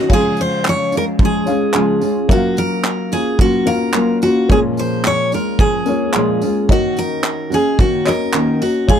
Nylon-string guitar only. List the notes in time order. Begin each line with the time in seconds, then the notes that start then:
Already playing: F#4
0.09 C#3 F3 G#3 C#4 F4
0.92 G#3 C#4 F4
1.20 F3 G#3 C#4 F4
1.47 G#3 C#4 F4
1.74 C#3 F3 G#3 C#4 F4
2.01 G#3 C#4 F4
2.29 F#3 A#3 C#4 F4
3.12 A#3 C#4 F4
3.39 F#3 A#3 C#4 F4
3.66 A#3 C#4 F4
3.93 F#3 A#3 C#4 F4
4.22 A#3 C#4 F4
4.50 A#2 F3 G#3 C#4 F4
5.32 G#3 C#4 F4
5.60 F3 G#3 C#4 F4
5.88 G#3 C#4 F4
6.14 A#2 F3 G#3 C#4 F4
6.42 G#3 C#4 F4
6.69 D#3 A#3 C#4 F#4
7.50 A#3 C#4 F#4
7.79 D#3 A#3 C#4 F#4
8.07 A#3 C#4 F#4
8.34 D#3 A#3 C#4 F#4
8.60 A#3 C#4 F#4
8.88 C#3 F3 G#3 C#4 F4